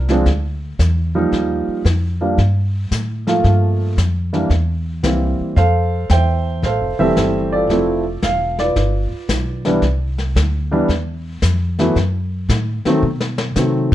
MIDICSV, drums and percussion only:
0, 0, Header, 1, 2, 480
1, 0, Start_track
1, 0, Key_signature, 0, "major"
1, 0, Tempo, 531915
1, 1192, Time_signature, 4, 2, 24, 8
1, 12588, End_track
2, 0, Start_track
2, 0, Title_t, "Drums"
2, 78, Note_on_c, 9, 38, 39
2, 168, Note_off_c, 9, 38, 0
2, 233, Note_on_c, 9, 25, 54
2, 233, Note_on_c, 9, 38, 43
2, 235, Note_on_c, 9, 36, 28
2, 323, Note_off_c, 9, 38, 0
2, 325, Note_off_c, 9, 36, 0
2, 714, Note_on_c, 9, 36, 22
2, 716, Note_on_c, 9, 38, 58
2, 717, Note_on_c, 9, 44, 48
2, 805, Note_off_c, 9, 36, 0
2, 806, Note_off_c, 9, 38, 0
2, 807, Note_off_c, 9, 44, 0
2, 1193, Note_on_c, 9, 36, 21
2, 1196, Note_off_c, 9, 25, 0
2, 1196, Note_on_c, 9, 25, 50
2, 1196, Note_on_c, 9, 38, 35
2, 1284, Note_off_c, 9, 36, 0
2, 1286, Note_off_c, 9, 38, 0
2, 1671, Note_on_c, 9, 36, 21
2, 1674, Note_on_c, 9, 38, 52
2, 1675, Note_on_c, 9, 44, 49
2, 1761, Note_off_c, 9, 36, 0
2, 1764, Note_off_c, 9, 38, 0
2, 1765, Note_off_c, 9, 44, 0
2, 2150, Note_off_c, 9, 25, 0
2, 2150, Note_on_c, 9, 25, 54
2, 2150, Note_on_c, 9, 36, 23
2, 2150, Note_on_c, 9, 38, 41
2, 2240, Note_off_c, 9, 36, 0
2, 2240, Note_off_c, 9, 38, 0
2, 2629, Note_on_c, 9, 36, 19
2, 2632, Note_on_c, 9, 38, 52
2, 2633, Note_on_c, 9, 44, 63
2, 2719, Note_off_c, 9, 36, 0
2, 2722, Note_off_c, 9, 38, 0
2, 2723, Note_off_c, 9, 44, 0
2, 2953, Note_on_c, 9, 38, 41
2, 3044, Note_off_c, 9, 38, 0
2, 3107, Note_off_c, 9, 25, 0
2, 3107, Note_on_c, 9, 25, 46
2, 3107, Note_on_c, 9, 36, 17
2, 3107, Note_on_c, 9, 38, 38
2, 3197, Note_off_c, 9, 36, 0
2, 3197, Note_off_c, 9, 38, 0
2, 3586, Note_on_c, 9, 36, 17
2, 3591, Note_on_c, 9, 38, 56
2, 3591, Note_on_c, 9, 44, 53
2, 3676, Note_off_c, 9, 36, 0
2, 3681, Note_off_c, 9, 38, 0
2, 3682, Note_off_c, 9, 44, 0
2, 3912, Note_on_c, 9, 38, 38
2, 4002, Note_off_c, 9, 38, 0
2, 4064, Note_off_c, 9, 25, 0
2, 4064, Note_on_c, 9, 25, 45
2, 4064, Note_on_c, 9, 36, 20
2, 4064, Note_on_c, 9, 38, 40
2, 4154, Note_off_c, 9, 36, 0
2, 4154, Note_off_c, 9, 38, 0
2, 4543, Note_on_c, 9, 38, 57
2, 4544, Note_on_c, 9, 36, 21
2, 4544, Note_on_c, 9, 44, 53
2, 4634, Note_off_c, 9, 36, 0
2, 4634, Note_off_c, 9, 38, 0
2, 4635, Note_off_c, 9, 44, 0
2, 5023, Note_on_c, 9, 36, 25
2, 5025, Note_off_c, 9, 25, 0
2, 5025, Note_on_c, 9, 25, 43
2, 5025, Note_on_c, 9, 38, 42
2, 5114, Note_off_c, 9, 36, 0
2, 5115, Note_off_c, 9, 38, 0
2, 5501, Note_on_c, 9, 38, 56
2, 5502, Note_on_c, 9, 44, 52
2, 5503, Note_on_c, 9, 36, 15
2, 5591, Note_off_c, 9, 38, 0
2, 5592, Note_off_c, 9, 44, 0
2, 5594, Note_off_c, 9, 36, 0
2, 5984, Note_on_c, 9, 36, 25
2, 5985, Note_off_c, 9, 25, 0
2, 5985, Note_on_c, 9, 25, 49
2, 5985, Note_on_c, 9, 38, 43
2, 6074, Note_off_c, 9, 36, 0
2, 6075, Note_off_c, 9, 38, 0
2, 6466, Note_on_c, 9, 36, 20
2, 6467, Note_on_c, 9, 38, 57
2, 6467, Note_on_c, 9, 44, 51
2, 6556, Note_off_c, 9, 36, 0
2, 6557, Note_off_c, 9, 38, 0
2, 6558, Note_off_c, 9, 44, 0
2, 6945, Note_on_c, 9, 36, 19
2, 6947, Note_off_c, 9, 25, 0
2, 6947, Note_on_c, 9, 25, 45
2, 6947, Note_on_c, 9, 38, 41
2, 7035, Note_off_c, 9, 36, 0
2, 7037, Note_off_c, 9, 38, 0
2, 7422, Note_on_c, 9, 38, 56
2, 7423, Note_on_c, 9, 44, 53
2, 7424, Note_on_c, 9, 36, 22
2, 7512, Note_off_c, 9, 38, 0
2, 7513, Note_off_c, 9, 44, 0
2, 7514, Note_off_c, 9, 36, 0
2, 7748, Note_on_c, 9, 38, 39
2, 7838, Note_off_c, 9, 38, 0
2, 7905, Note_on_c, 9, 36, 23
2, 7906, Note_off_c, 9, 25, 0
2, 7906, Note_on_c, 9, 25, 48
2, 7906, Note_on_c, 9, 38, 49
2, 7995, Note_off_c, 9, 36, 0
2, 7996, Note_off_c, 9, 38, 0
2, 8383, Note_on_c, 9, 36, 23
2, 8383, Note_on_c, 9, 38, 55
2, 8384, Note_on_c, 9, 44, 52
2, 8473, Note_off_c, 9, 36, 0
2, 8474, Note_off_c, 9, 38, 0
2, 8475, Note_off_c, 9, 44, 0
2, 8707, Note_on_c, 9, 38, 42
2, 8798, Note_off_c, 9, 38, 0
2, 8861, Note_off_c, 9, 25, 0
2, 8861, Note_on_c, 9, 25, 45
2, 8861, Note_on_c, 9, 38, 37
2, 8863, Note_on_c, 9, 36, 17
2, 8952, Note_off_c, 9, 38, 0
2, 8953, Note_off_c, 9, 36, 0
2, 9190, Note_on_c, 9, 38, 36
2, 9280, Note_off_c, 9, 38, 0
2, 9347, Note_on_c, 9, 36, 26
2, 9352, Note_on_c, 9, 38, 61
2, 9353, Note_on_c, 9, 44, 56
2, 9437, Note_off_c, 9, 36, 0
2, 9442, Note_off_c, 9, 38, 0
2, 9443, Note_off_c, 9, 44, 0
2, 9827, Note_on_c, 9, 36, 21
2, 9830, Note_off_c, 9, 25, 0
2, 9830, Note_on_c, 9, 25, 45
2, 9830, Note_on_c, 9, 38, 42
2, 9918, Note_off_c, 9, 36, 0
2, 9920, Note_off_c, 9, 38, 0
2, 10307, Note_on_c, 9, 38, 61
2, 10308, Note_on_c, 9, 44, 56
2, 10309, Note_on_c, 9, 36, 24
2, 10397, Note_off_c, 9, 38, 0
2, 10398, Note_off_c, 9, 44, 0
2, 10399, Note_off_c, 9, 36, 0
2, 10636, Note_on_c, 9, 38, 40
2, 10727, Note_off_c, 9, 38, 0
2, 10792, Note_on_c, 9, 36, 21
2, 10794, Note_off_c, 9, 25, 0
2, 10794, Note_on_c, 9, 25, 43
2, 10794, Note_on_c, 9, 38, 47
2, 10882, Note_off_c, 9, 36, 0
2, 10884, Note_off_c, 9, 38, 0
2, 11273, Note_on_c, 9, 36, 27
2, 11275, Note_on_c, 9, 38, 67
2, 11276, Note_on_c, 9, 44, 55
2, 11364, Note_off_c, 9, 36, 0
2, 11366, Note_off_c, 9, 38, 0
2, 11366, Note_off_c, 9, 44, 0
2, 11599, Note_on_c, 9, 38, 43
2, 11689, Note_off_c, 9, 38, 0
2, 11916, Note_on_c, 9, 38, 59
2, 12007, Note_off_c, 9, 38, 0
2, 12075, Note_on_c, 9, 38, 80
2, 12165, Note_off_c, 9, 38, 0
2, 12234, Note_on_c, 9, 38, 55
2, 12235, Note_on_c, 9, 44, 56
2, 12325, Note_off_c, 9, 38, 0
2, 12325, Note_off_c, 9, 44, 0
2, 12588, Note_off_c, 9, 25, 0
2, 12588, End_track
0, 0, End_of_file